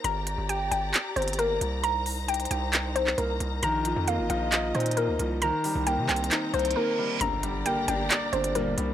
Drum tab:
HH |x-----------x-----------x-----------x-----------x-----------x--x--x--x--x-----------x-----------|x-----------o-----------x--x--x--x--x-----------x-----------x-----------x-----------x-----------|x-----------x-----------x-----------x-----------x-----------x--x--x--x--x-----------x-----------|x-----------o-----------x-----------x---x---x---x-----------x--x--x--x--------------------------|
CP |------------------------------------------------x-----------------------------------------------|------------------------------------------------x-----------------x-----------------------------|------------------------------------------------x-----------------------------------------------|------------------------------------x-----------x-----------------------------------------------|

HH |x-----------x-----------x-----------x-----------x-----------x-----x-----x-----------x-----------|
CP |------------------------------------------------x-----------------------------------------------|